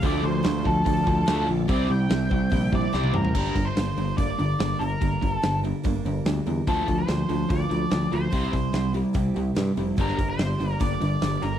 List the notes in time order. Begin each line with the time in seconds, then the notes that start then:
0.01 D2 D3 F3 A3 D4 F4 A4 D5, kick, open hi-hat
0.06 D5
0.22 D2 D3 F3 D4 F4 A4 C5
0.43 D2 D3 F3 D4 F4 A4, snare, open hi-hat
0.63 D2 D3 F3 D4 F4 A4, kick
0.84 D2 D3 F3 D4 F4 A4, kick, open hi-hat
1.05 D2 D3 F3 D4 F4 A4, kick
1.26 D2 D3 F3 A3 D4 F4 A4, snare, open hi-hat
1.47 A#1 D3 F3 D4 F4 A4
1.68 C2 C3 G3 C4 E4 C5 D5, kick, open hi-hat
1.88 C2 C3 G3 C4 E4 C5 G5
2.09 C2 C3 G3 C4 E4 C5, snare, open hi-hat
2.29 C2 C3 G3 C4 E4 C5, kick
2.50 A#1 C3 G3 C4 E4 C5, kick, open hi-hat
2.71 C3 G3 C4 E4 C5, kick
2.75 D5
2.92 C2 C3 G3 C4 E4 C5 D5, snare
3.04 high tom
3.13 A1 C3 G3 C4 E4 A#4 C5, mid tom
3.25 floor tom
3.35 G1 G2 D3 G3 A#3 D4 A#4, kick, crash
3.45 snare
3.55 G1 G2 D3 G3 A#3 D4 A#4, kick, open hi-hat
3.65 C5
3.76 G1 G2 D3 G3 A#3 D4 A#4, snare, open hi-hat
3.96 G1 G2 D3 G3 A#3 D4 A#4, open hi-hat
4.17 G1 G2 D3 G3 A#3 D4 A#4 D5, kick, open hi-hat
4.38 G1 G2 D3 G3 A#3 D4 A#4, open hi-hat
4.59 G1 G2 D3 G3 A#3 D4 A#4, snare, open hi-hat
4.79 G1 G2 D3 G3 A#3 D4 A#4, open hi-hat
5.01 G1 G2 D3 G3 A#3 D4 A#4, kick, open hi-hat
5.21 G1 G2 D3 G3 A#3 D4 A#4, kick, open hi-hat
5.34 A4
5.42 G1 G2 D3 G3 A#3 D4 A#4, snare, open hi-hat
5.63 G2 D3 G3 A#3 D4 A#4, open hi-hat
5.83 G1 G2 D3 G3 A#3 D4 A#4, kick, open hi-hat
6.04 G1 G2 D3 G3 A#3 D4 A#4, open hi-hat
6.25 D2 G2 D3 G3 A#3 D4 A#4, snare, open hi-hat
6.46 E2 G2 D3 G3 A#3 D4 A#4, open hi-hat
6.67 D2 D3 F3 A3 D4 F4 A4, kick, open hi-hat
6.87 D2 D3 F3 D4 F4 A4, kick, open hi-hat
6.98 C5
7.08 D2 D3 F3 D4 F4 A4, snare, open hi-hat
7.29 D2 D3 F3 D4 F4 A4, open hi-hat
7.50 D2 D3 F3 D4 F4 A4 D5, kick, open hi-hat
7.70 D2 D3 F3 D4 F4 A4, open hi-hat
7.89 D2 D3 F3 D4 F4 A4, snare, open hi-hat
8.10 D2 D3 F3 D4 F4 A4 C5, open hi-hat
8.30 C2 C3 G3 C4 E4 G4, kick, open hi-hat
8.43 snare
8.51 C2 C3 G3 C4 E4 G4, kick, open hi-hat
8.72 C2 C3 G3 C4 E4 G4, snare, open hi-hat
8.93 C3 G3 C4 E4 G4, open hi-hat
9.13 C2 C3 G3 C4 E4 G4, kick, open hi-hat
9.34 C2 C3 G3 C4 E4 G4, open hi-hat
9.55 G2 C3 G3 C4 E4 G4, snare, open hi-hat
9.76 F1 C3 G3 C4 E4 G4, open hi-hat
9.96 G1 G2 D3 G3 A#3 D4 G4 A#4, kick, open hi-hat
10.01 A#4
10.09 snare
10.17 G1 G2 D3 G3 A#3 D4 G4, kick, open hi-hat
10.30 C5
10.38 G1 G2 D3 G3 A#3 D4 G4, snare, open hi-hat
10.59 G1 G2 D3 G3 A#3 D4 G4, open hi-hat
10.72 A#4
10.79 G1 G2 D3 G3 A#3 D4 G4 D5, kick, open hi-hat
11.00 G1 G2 D3 G3 A#3 D4 G4, open hi-hat
11.20 G1 G2 D3 G3 A#3 D4 G4, snare, open hi-hat
11.41 G1 G2 D3 G3 A#3 D4 G4 A#4, open hi-hat